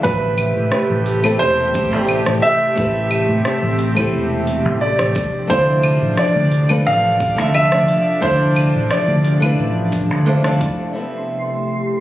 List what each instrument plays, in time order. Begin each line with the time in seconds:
0.02 fingered electric bass A1, analog synth pad C3 A3 G4, nylon-string guitar A3 C4 E4 G4, grand piano B4, kick, shaker
0.07 nylon-string guitar B4
0.22 shaker
0.38 open hi-hat, claves, shaker
0.56 fingered electric bass A2, shaker
0.72 cross-stick, shaker
0.90 fingered electric bass A1
1.06 open hi-hat, shaker
1.23 nylon-string guitar A3 C4 E4 G4 A4, claves, shaker
1.39 fingered electric bass E1, grand piano C5, shaker
1.74 kick, open hi-hat, shaker
1.90 fingered electric bass A1, nylon-string guitar A3 C4 E4 G4, shaker
1.95 nylon-string guitar D5
2.09 claves, shaker
2.26 fingered electric bass A1, cross-stick
2.42 grand piano E5, open hi-hat, shaker
2.61 shaker
2.75 fingered electric bass A1, nylon-string guitar A3 C4 E4 G4, analog synth pad C4, kick, shaker
2.79 nylon-string guitar B4
2.95 shaker
3.11 open hi-hat, claves, shaker
3.29 fingered electric bass A2, shaker
3.45 cross-stick, shaker
3.62 fingered electric bass A1
3.79 open hi-hat, shaker
3.94 nylon-string guitar A3 C4 E4 G4, kick, claves, shaker
3.99 nylon-string guitar A4
4.13 fingered electric bass E1, shaker
4.47 open hi-hat, shaker
4.65 fingered electric bass A1, shaker
4.81 grand piano D5, shaker
4.99 fingered electric bass A1, cross-stick
5.15 analog synth pad F3 D4 D5, kick, open hi-hat, shaker
5.34 shaker
5.47 fingered electric bass D2, nylon-string guitar A3 D4 E4 F4, grand piano C5, kick, shaker
5.52 nylon-string guitar C5
5.68 shaker
5.83 open hi-hat, claves, shaker
6.01 fingered electric bass A1, shaker
6.17 grand piano D5, cross-stick, shaker
6.36 fingered electric bass D2
6.52 open hi-hat, shaker
6.69 nylon-string guitar A3 C4 D4 F4 B4, claves, shaker
6.86 fingered electric bass A1, grand piano F5, shaker
7.20 kick, open hi-hat, shaker
7.36 fingered electric bass D2, nylon-string guitar A3 D4 E4 F4, shaker
7.40 nylon-string guitar E5
7.54 grand piano E5, claves, shaker
7.72 fingered electric bass D2, cross-stick
7.88 open hi-hat, shaker
8.07 shaker
8.20 fingered electric bass D2, nylon-string guitar A3 D4 E4 F4, grand piano C5, kick, shaker
8.25 nylon-string guitar C5
8.41 shaker
8.56 open hi-hat, claves, shaker
8.74 fingered electric bass A1, shaker
8.91 grand piano D5, cross-stick, shaker
9.08 fingered electric bass D2, shaker
9.24 open hi-hat, shaker
9.40 nylon-string guitar A3 D4 E4 F4, claves, shaker
9.45 nylon-string guitar B4
9.58 fingered electric bass A1, shaker
9.92 kick, open hi-hat, shaker
10.11 fingered electric bass D2, shaker
10.26 nylon-string guitar A3 D4 E4 F4 C5, shaker
10.44 fingered electric bass D2, nylon-string guitar A3 D4 E4 F4 D5, cross-stick, shaker
10.61 kick, open hi-hat, shaker
10.79 shaker
10.93 analog synth pad C3 A3 G4, nylon-string guitar A3 C4 E4 G4, synth texture C6
10.97 nylon-string guitar B3
11.13 shaker
11.29 shaker
11.47 shaker
11.64 shaker